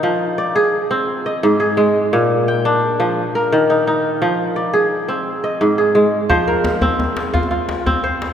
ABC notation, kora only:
X:1
M:12/8
L:1/8
Q:3/8=115
K:Fdor
V:1 name="Kora"
z2 d3 z2 e2 A3 | z2 g3 z2 B2 E3 | z2 d3 z2 e2 A3 | c B3 z3 F3 c2 |]
V:2 name="Kora" clef=bass
F,2 z A2 C z2 A,,2 A,2 | B,,2 z D2 F, z2 E,2 E2 | F,2 z A2 C z2 A,,2 A,2 | F,2 z C2 z F2 z C2 z |]